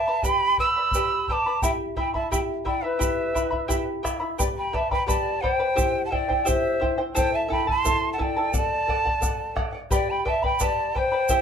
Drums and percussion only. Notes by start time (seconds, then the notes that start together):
0.23 bombo low, shaker
0.58 bombo low
0.91 bombo low, shaker
1.28 bombo low
1.62 bombo low, shaker
1.96 bombo low
2.15 bombo low
2.32 bombo low, shaker
2.66 bombo low
3.01 bombo low, shaker
3.35 bombo low, shaker
3.52 bombo low
3.70 bombo low, shaker
4.05 bombo rim, bombo low, shaker
4.40 bombo low, shaker
4.74 bombo low
4.91 bombo low
5.09 bombo low, shaker
5.44 bombo low
5.78 bombo low, shaker
6.12 bombo low
6.30 bombo low
6.46 bombo low, shaker
6.82 bombo low
7.16 bombo low, shaker
7.51 bombo low
7.69 bombo low
7.85 bombo low, shaker
8.20 bombo low
8.54 bombo low, shaker
8.89 bombo low
9.06 bombo low
9.22 bombo low, shaker
9.57 bombo rim, bombo low
9.91 bombo low, shaker
10.26 bombo low
10.44 bombo low
10.60 bombo low, shaker
10.96 bombo low
11.29 bombo low, shaker